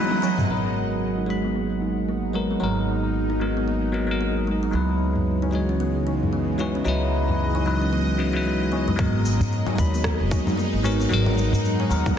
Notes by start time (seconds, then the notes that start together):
Already playing: C#3 E3 F#3 G#3 D#4 E4 B4 D#5 F#5
0.11 high tom
0.22 F#3, tabla na, shaker
0.37 F#3, mid tom, tabla ge, shaker
0.47 G#1 F#3 B3 A#4
0.76 D#4
1.18 D#4
1.26 F#3 G#3
1.30 B5
1.44 B3
1.55 A#3
1.82 D#4
2.09 A#3
2.34 F#3 G#3 B3 A#4
2.51 B3
2.60 G#1 F#3
2.64 A#4
3.30 D#4
3.40 F#3 G#3 B3 A#4
3.57 B3
3.68 A#3
3.92 F#3 B3 D#4 A#4
4.07 F#3
4.11 A#4
4.21 A#3
4.47 G#3
4.63 B3
4.71 C#2 C#3 F#3 D#4 E4
4.75 B4
4.81 G#3
5.16 tabla ge
5.26 E3
5.42 D#4, tabla na, tabla tin
5.51 E3 F#3 G#3 D#4 C#5, tabla tin
5.69 C#4
5.80 B3
5.92 D#5
6.07 D#4, tabla na
6.23 tabla ge
6.33 B3
6.58 F#3 G#3 D#4 E4 B4, tabla na
6.75 C#4
6.84 C#2 F#3 D#4 E4 B4
7.29 tabla ge
7.55 D#4, tabla na, tabla tin
7.65 E3 F#3 G#3 D#4 B4, tabla tin
7.82 C#4
7.93 B3
8.18 F#3 C#4 D#4 E4 B4
8.33 F#3 D#4 E4 B4
8.46 G#3
8.72 B3, tabla na
8.88 G#3, tabla ge
8.96 G#1 F#3 B3, kick, shaker
9.01 A#4
9.26 D#4, shaker
9.40 G#2, tabla ge, shaker
9.52 shaker
9.67 D#4, tabla na, tabla tin, low conga
9.75 D#2 F#3 G#3, kick, shaker
9.79 B5
9.94 B3, shaker
10.04 A#3, kick, cross-stick, shaker
10.20 F#1 F#5
10.31 D#4, kick, tabla na, shaker
10.46 tabla ge, low conga, shaker
10.58 A#3, shaker
10.73 G#1
10.83 F#3 G#3 B3 A#4, tabla na, shaker
11.00 B3, shaker
11.09 G#1 F#3, shaker
11.13 A#4
11.26 low conga
11.38 shaker
11.53 G#2, tabla ge, shaker
11.65 shaker
11.80 D#4, tabla na, tabla tin
11.89 D#2 F#3 G#3 B3 A#4, tabla tin, shaker
12.06 B3, kick, low conga, shaker